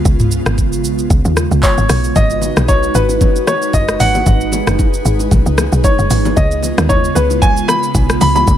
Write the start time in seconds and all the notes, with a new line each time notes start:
Already playing: C#3 G#3 B3 F4 B4
0.05 C#2, kick, shaker
0.20 mid tom, shaker
0.32 shaker
0.46 G#1, cross-stick, shaker
0.58 kick, shaker
0.73 shaker
0.84 B1, shaker
0.99 shaker
1.10 C#2, kick, shaker
1.25 D#2, shaker
1.37 cross-stick, shaker
1.51 C#2, shaker
1.63 C#5, kick, clap, shaker
1.78 G#1, shaker
1.89 B1, cross-stick, open hi-hat, shaker
2.04 shaker
2.16 G#1 G#3 D#4 F#4 B4 D#5, kick, low conga, shaker
2.30 shaker
2.42 low bongo, shaker
2.57 B1, cross-stick, low bongo, shaker
2.68 C#5, kick, high bongo, shaker
2.83 shaker
2.95 G#1 B4, shaker
3.09 high bongo, shaker
3.21 kick, low conga, shaker
3.36 shaker
3.47 C#5, cross-stick, low bongo, shaker
3.62 shaker
3.73 F#1 D#5, kick, high bongo, shaker
3.88 cross-stick, shaker
4.00 G#1 F#5, open hi-hat, low conga, shaker
4.15 high bongo, low bongo, shaker
4.26 G#1 G#4, kick, low conga, shaker
4.41 shaker
4.52 low bongo, shaker
4.67 F#1, cross-stick, low bongo, shaker
4.79 kick, high bongo, shaker
4.94 shaker
5.05 G#1, shaker
5.20 high bongo, shaker
5.31 B1, kick, low conga, shaker
5.46 C#2, shaker
5.58 cross-stick, low bongo, shaker
5.72 B1, shaker
5.84 C#5, kick, high bongo, shaker
5.99 F#1, shaker
6.10 G#1, open hi-hat, low conga, shaker
6.25 high bongo, low bongo, shaker
6.36 C#2 C#3 B3 F4 D#5, kick, low conga, shaker
6.51 shaker
6.63 low bongo, shaker
6.78 D#2, cross-stick, low bongo, shaker
6.89 C#5, kick, high bongo, shaker
7.04 shaker
7.15 C#2 B4, shaker
7.30 high bongo, shaker
7.42 G#5, kick, low conga, shaker
7.57 shaker
7.68 B5, cross-stick, low bongo, shaker
7.83 shaker
7.95 B1, kick, high bongo, shaker
8.10 cross-stick, shaker
8.21 C#2 B5, open hi-hat, low conga, shaker
8.35 B5, high bongo, low bongo, shaker
8.47 C#2, kick, low conga, shaker